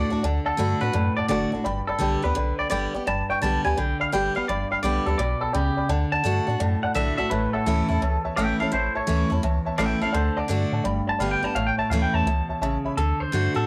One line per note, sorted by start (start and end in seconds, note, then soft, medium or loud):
0.00 0.21 A2 medium
0.00 0.10 D4 medium
0.00 0.22 D5 medium
0.10 0.16 D2 medium
0.10 0.24 D4 soft
0.10 0.23 F#4 medium
0.10 0.19 D5 medium
0.10 0.19 F#5 medium
0.10 0.19 A5 medium
0.23 0.39 D2 loud
0.23 0.56 D3 medium
0.23 0.37 D5 loud
0.23 0.37 F#5 medium
0.23 0.38 A5 loud
0.45 0.52 D2 medium
0.45 0.80 A4 medium
0.45 0.53 D5 medium
0.45 0.53 F#5 medium
0.45 0.54 A5 loud
0.57 0.75 G2 medium
0.57 0.80 D3 medium
0.57 0.80 A3 medium
0.57 0.81 D4 medium
0.57 0.79 F#4 medium
0.57 0.73 D5 medium
0.57 0.73 F#5 medium
0.57 0.73 B5 medium
0.81 0.90 A2 medium
0.81 0.94 D4 soft
0.81 0.93 F#4 medium
0.81 1.16 B4 medium
0.81 0.89 D5 medium
0.81 0.89 F#5 medium
0.81 0.89 A5 medium
0.93 1.10 F#2 loud
0.93 1.62 A2 medium
0.93 1.08 D5 medium
0.93 1.08 F#5 medium
0.93 1.08 A5 medium
1.17 1.23 F#2 medium
1.17 1.28 D5 medium
1.17 1.25 D5 medium
1.17 1.25 F#5 medium
1.17 1.25 A5 medium
1.28 1.46 F#1 medium
1.28 1.51 D3 medium
1.28 1.51 A3 medium
1.28 1.52 D4 medium
1.28 1.51 F#4 medium
1.28 1.51 D5 medium
1.28 1.43 D5 medium
1.28 1.44 F#5 medium
1.28 1.44 A5 loud
1.52 1.58 F#1 medium
1.52 1.65 D4 soft
1.52 1.64 F#4 medium
1.52 1.60 D5 medium
1.52 1.60 F#5 medium
1.52 1.60 A5 medium
1.64 1.81 G1 loud
1.64 2.34 G2 medium
1.64 1.78 D5 loud
1.64 1.78 G5 loud
1.64 1.79 B5 loud
1.87 1.93 G1 medium
1.87 2.22 A4 medium
1.87 1.96 D5 medium
1.87 1.96 G5 medium
1.87 1.96 B5 medium
1.99 2.16 B1 medium
1.99 2.21 D3 medium
1.99 2.22 G3 medium
1.99 2.22 B3 medium
1.99 2.21 G4 medium
1.99 2.15 D5 medium
1.99 2.15 G5 medium
1.99 2.15 B5 medium
2.22 2.33 D2 medium
2.22 2.36 B3 soft
2.22 2.35 G4 medium
2.22 2.58 B4 medium
2.22 2.31 D5 medium
2.22 2.31 G5 medium
2.22 2.31 B5 medium
2.35 2.52 B1 medium
2.35 2.68 D3 medium
2.35 2.50 D5 medium
2.35 2.50 G5 medium
2.35 2.50 B5 medium
2.58 2.65 B1 medium
2.58 2.66 D5 medium
2.58 2.69 D5 medium
2.58 2.66 G5 medium
2.58 2.66 B5 medium
2.70 2.87 G1 medium
2.70 2.92 D3 medium
2.70 2.93 G3 medium
2.70 2.93 B3 loud
2.70 2.93 G4 loud
2.70 2.84 D5 medium
2.70 2.93 D5 medium
2.70 2.85 G5 medium
2.70 2.85 B5 loud
2.94 2.99 G1 medium
2.94 3.07 B3 soft
2.94 3.06 G4 medium
2.94 3.02 D5 medium
2.94 3.02 G5 medium
2.94 3.02 D6 medium
3.07 3.23 G1 loud
3.07 3.75 G2 medium
3.07 3.20 D5 medium
3.07 3.21 G5 medium
3.07 3.29 A5 loud
3.07 3.21 B5 loud
3.29 3.35 G1 medium
3.29 3.37 D5 medium
3.29 3.37 G5 medium
3.29 3.42 G5 medium
3.29 3.37 C#6 loud
3.41 3.58 B1 loud
3.41 3.64 D3 medium
3.41 3.64 G3 medium
3.41 3.64 B3 medium
3.41 3.63 G4 medium
3.41 3.55 D5 medium
3.41 3.64 A5 medium
3.41 3.56 B5 medium
3.64 3.74 D2 medium
3.64 3.78 B3 soft
3.64 3.77 G4 medium
3.64 3.72 D5 medium
3.64 3.72 G5 medium
3.64 3.79 G#5 medium
3.64 3.72 B5 medium
3.77 3.94 B1 loud
3.77 4.11 D3 medium
3.77 3.91 D5 medium
3.77 3.91 G5 medium
3.77 4.00 G5 loud
3.77 3.91 B5 medium
4.00 4.06 B1 medium
4.00 4.07 D5 medium
4.00 4.13 F5 medium
4.00 4.07 G5 medium
4.00 4.08 B5 medium
4.12 4.29 G1 medium
4.12 4.34 D3 medium
4.12 4.35 G3 medium
4.12 4.35 B3 medium
4.12 4.34 G4 loud
4.12 4.26 D5 medium
4.12 4.26 G5 medium
4.12 4.35 G5 medium
4.12 4.27 B5 loud
4.35 4.41 G1 medium
4.35 4.48 B3 soft
4.35 4.47 G4 medium
4.35 4.43 D5 medium
4.35 4.48 F5 medium
4.35 4.43 G5 medium
4.35 4.44 B5 medium
4.48 4.64 G1 loud
4.48 5.17 G2 medium
4.48 4.70 D5 medium
4.48 4.62 D5 loud
4.48 4.62 G5 medium
4.48 4.63 B5 loud
4.71 4.76 G1 medium
4.71 4.78 D5 medium
4.71 4.82 F5 medium
4.71 4.79 G5 medium
4.71 4.79 B5 loud
4.83 4.99 B1 medium
4.83 5.05 D3 medium
4.83 5.06 G3 medium
4.83 5.06 B3 medium
4.83 5.05 G4 loud
4.83 5.05 D5 medium
4.83 4.97 D5 medium
4.83 4.98 G5 medium
4.83 4.98 B5 medium
5.06 5.15 D2 medium
5.06 5.19 B3 soft
5.06 5.18 G4 medium
5.06 5.18 A4 medium
5.06 5.14 D5 medium
5.06 5.14 G5 medium
5.06 5.15 B5 medium
5.18 5.34 B1 loud
5.18 5.53 B2 medium
5.18 5.40 D5 medium
5.18 5.32 D5 medium
5.18 5.33 G5 medium
5.18 5.33 B5 medium
5.40 5.47 B1 medium
5.40 5.53 A4 medium
5.40 5.49 D5 medium
5.40 5.49 G5 medium
5.40 5.49 B5 medium
5.53 5.70 C#2 medium
5.53 5.88 C#3 medium
5.53 5.88 G4 loud
5.53 5.67 D5 medium
5.53 5.68 G5 medium
5.53 5.68 B5 loud
5.77 5.82 C#2 medium
5.77 5.84 D5 medium
5.77 5.84 G5 medium
5.77 5.85 B5 medium
5.89 6.05 D2 medium
5.89 6.22 D3 medium
5.89 6.03 D5 loud
5.89 6.03 F#5 medium
5.89 6.03 A5 loud
6.12 6.17 D2 medium
6.12 6.20 D5 medium
6.12 6.20 F#5 medium
6.12 6.81 A5 loud
6.12 6.20 A5 loud
6.24 6.40 G2 medium
6.24 6.46 D3 medium
6.24 6.47 A3 medium
6.24 6.47 D4 medium
6.24 6.45 F#4 loud
6.24 6.38 D5 medium
6.24 6.39 F#5 medium
6.47 6.56 A2 medium
6.47 6.61 D4 soft
6.47 6.59 F#4 medium
6.47 6.55 D5 medium
6.47 6.55 F#5 medium
6.47 6.55 A5 medium
6.60 6.76 F#2 loud
6.60 7.28 A2 medium
6.60 6.74 D5 medium
6.60 6.74 F#5 medium
6.60 6.74 A5 medium
6.83 6.88 F#2 medium
6.83 6.91 D5 medium
6.83 6.95 F#5 medium
6.83 6.91 F#5 medium
6.83 6.91 A5 medium
6.94 7.11 B1 loud
6.94 7.17 D3 medium
6.94 7.17 A3 medium
6.94 7.18 D4 medium
6.94 7.17 F#4 medium
6.94 7.09 D5 medium
6.94 7.16 E5 loud
6.94 7.09 F#5 medium
6.94 7.09 A5 loud
7.17 7.24 B1 medium
7.17 7.31 D4 soft
7.17 7.30 F#4 medium
7.17 7.26 D5 medium
7.17 7.30 E5 medium
7.17 7.26 F#5 medium
7.17 7.26 A5 medium
7.30 7.47 A1 loud
7.30 7.99 A2 medium
7.30 7.53 B4 medium
7.30 7.45 C#5 medium
7.30 7.45 E5 medium
7.30 7.45 A5 loud
7.53 7.59 A1 medium
7.53 8.22 A4 medium
7.53 7.61 C#5 medium
7.53 7.61 E5 medium
7.53 7.61 F#5 loud
7.66 7.82 D2 medium
7.66 7.88 E3 medium
7.66 7.88 A3 medium
7.66 7.89 C#4 loud
7.66 7.87 E4 medium
7.66 7.80 C#5 medium
7.66 7.80 E5 medium
7.66 7.80 A5 medium
7.88 7.98 E2 medium
7.88 8.02 C#4 soft
7.88 8.01 E4 medium
7.88 7.97 C#5 medium
7.88 7.97 E5 medium
7.88 7.97 A5 medium
8.02 8.18 C#2 loud
8.02 8.70 E2 medium
8.02 8.15 C#5 medium
8.02 8.15 E5 medium
8.02 8.16 A5 medium
8.24 8.30 C#2 medium
8.24 8.32 C#5 medium
8.24 8.32 E5 medium
8.24 8.32 A5 loud
8.36 8.53 A1 medium
8.36 8.59 E3 medium
8.36 8.59 A3 medium
8.36 8.60 C#4 medium
8.36 8.59 E4 medium
8.36 8.51 C#5 loud
8.36 8.60 E5 medium
8.36 8.51 E5 medium
8.36 8.59 G5 medium
8.36 8.51 A5 loud
8.59 8.65 A1 medium
8.59 8.73 C#4 soft
8.59 8.72 E4 medium
8.59 8.71 A4 medium
8.59 8.68 C#5 medium
8.59 8.68 E5 medium
8.59 8.72 F5 medium
8.59 8.68 A5 medium
8.72 8.89 A1 medium
8.72 9.40 A2 medium
8.72 8.94 E4 medium
8.72 8.95 C5 medium
8.72 8.87 C#5 loud
8.72 8.87 E5 medium
8.72 8.87 A5 loud
8.95 9.01 A1 medium
8.95 9.03 C#5 medium
8.95 9.30 C#5 medium
8.95 9.03 E5 medium
8.95 9.03 A5 loud
9.07 9.24 D2 medium
9.07 9.29 E3 medium
9.07 9.29 A3 loud
9.07 9.30 C#4 loud
9.07 9.29 E4 medium
9.07 9.21 C#5 medium
9.07 9.22 E5 medium
9.07 9.22 A5 medium
9.30 9.40 E2 medium
9.30 9.43 C#4 soft
9.30 9.42 E4 medium
9.30 9.38 C#5 medium
9.30 9.38 E5 medium
9.30 9.39 A5 medium
9.43 9.59 C#2 loud
9.43 10.11 E2 medium
9.43 9.57 C#5 medium
9.43 9.57 E5 medium
9.43 9.58 A5 medium
9.65 9.71 C#2 medium
9.65 9.73 C#5 medium
9.65 9.74 E5 medium
9.65 9.74 A5 loud
9.78 9.94 A1 medium
9.78 10.00 E3 medium
9.78 10.01 A3 medium
9.78 10.01 C#4 loud
9.78 10.00 E4 medium
9.78 9.92 C#5 loud
9.78 10.01 E5 medium
9.78 9.92 E5 medium
9.78 10.01 G5 loud
9.78 9.92 A5 loud
10.01 10.07 A1 medium
10.01 10.15 C#4 soft
10.01 10.13 E4 medium
10.01 10.13 A4 medium
10.01 10.09 C#5 medium
10.01 10.09 E5 medium
10.01 10.14 F5 medium
10.01 10.09 A5 medium
10.13 10.30 D2 loud
10.13 10.47 D3 medium
10.13 10.35 A4 medium
10.13 10.37 C5 medium
10.13 10.27 D5 medium
10.13 10.27 F#5 medium
10.13 10.27 A5 loud
10.37 10.42 D2 medium
10.37 10.44 D5 loud
10.37 10.71 D5 loud
10.37 10.45 F#5 medium
10.37 10.45 A5 loud
10.48 10.65 G2 medium
10.48 10.83 D3 medium
10.48 10.83 A3 medium
10.48 10.84 D4 medium
10.48 10.84 F#4 loud
10.48 10.63 D5 medium
10.48 10.64 F#5 medium
10.48 10.64 A5 medium
10.72 10.81 A2 medium
10.72 10.80 D5 medium
10.72 10.80 F#5 medium
10.72 10.80 A5 medium
10.84 11.01 G1 loud
10.84 11.53 G2 medium
10.84 10.98 D5 medium
10.84 10.98 G5 medium
10.84 10.99 B5 loud
11.07 11.13 G1 medium
11.07 11.15 D5 medium
11.07 11.15 G5 medium
11.07 11.20 A5 loud
11.07 11.15 B5 medium
11.19 11.35 G1 medium
11.19 11.42 D3 medium
11.19 11.43 G3 medium
11.19 11.43 B3 medium
11.19 11.41 G4 loud
11.19 11.33 D5 medium
11.19 11.32 F5 medium
11.19 11.34 G5 medium
11.19 11.34 B5 loud
11.31 11.44 G5 medium
11.42 11.48 G1 medium
11.42 11.56 B3 soft
11.42 11.55 G4 medium
11.42 11.51 D5 medium
11.42 11.51 G5 medium
11.42 11.55 A5 medium
11.42 11.51 B5 medium
11.55 11.71 A1 loud
11.55 12.24 A2 medium
11.55 11.69 C#5 loud
11.55 11.69 E5 medium
11.55 11.67 F5 loud
11.55 11.70 A5 loud
11.67 11.78 G5 medium
11.77 11.83 A1 medium
11.77 11.85 C#5 medium
11.77 11.86 E5 medium
11.77 11.86 A5 loud
11.77 11.91 A5 medium
11.90 12.06 D2 loud
11.90 12.25 E3 medium
11.90 12.26 A3 medium
11.90 12.26 C#4 medium
11.90 12.27 E4 medium
11.90 12.05 C#5 medium
11.90 12.05 E5 medium
11.90 12.02 F5 medium
11.90 12.05 A5 medium
12.02 12.14 G5 loud
12.13 12.22 E2 medium
12.13 12.21 C#5 medium
12.13 12.21 E5 medium
12.13 12.94 A5 loud
12.13 12.22 A5 medium
12.25 12.41 C#2 loud
12.25 12.61 B2 medium
12.25 12.40 C#5 medium
12.25 12.40 E5 medium
12.25 12.41 A5 medium
12.49 12.54 C#2 medium
12.49 12.57 C#5 medium
12.49 12.57 E5 medium
12.49 12.57 A5 medium
12.61 12.77 A1 medium
12.61 12.97 C#3 medium
12.61 12.75 C#5 loud
12.61 12.76 E5 loud
12.61 12.76 A5 loud
12.84 12.89 A1 medium
12.84 12.92 C#5 medium
12.84 12.92 E5 medium
12.84 12.93 B5 loud
12.97 13.13 D2 loud
12.97 13.31 D3 medium
12.97 13.20 A4 loud
13.20 13.25 D2 medium
13.20 13.55 C5 medium
13.32 13.49 G2 loud
13.32 13.54 D3 medium
13.32 13.55 A3 medium
13.32 13.55 D4 medium
13.32 13.53 F#4 medium
13.54 13.65 A2 medium
13.54 13.67 D4 soft
13.54 13.67 F#4 medium
13.54 13.67 A4 medium